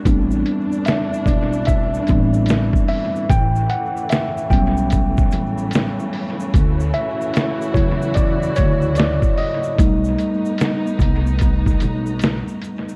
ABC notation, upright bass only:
X:1
M:4/4
L:1/16
Q:"Swing 16ths" 1/4=74
K:Amix
V:1 name="Upright bass" clef=bass
A,,,2 z4 B,,,4 A,,,3 z3 | A,,,2 z4 B,,,4 A,,,3 z3 | D,,2 z4 E,,4 D,,3 z3 | B,,,2 z4 =C,,4 B,,,3 z3 |]